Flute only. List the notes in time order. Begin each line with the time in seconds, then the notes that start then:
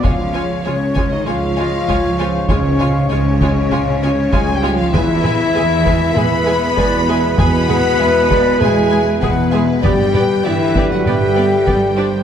0.04 F5
0.35 C#5
1.27 F5
1.57 D#5
1.88 C#5
2.20 C5
2.50 C#5
2.81 F5
3.11 C#5
3.72 F5
4.03 C#5
4.94 B4
5.24 E5
6.76 D5
7.08 E5
7.38 G#5
7.67 F#5
8.00 E5
8.30 D5
8.60 E5
9.20 F#5
9.51 E5
9.82 D5
10.13 B4
10.44 G5
11.05 E5
11.67 D5
11.97 C5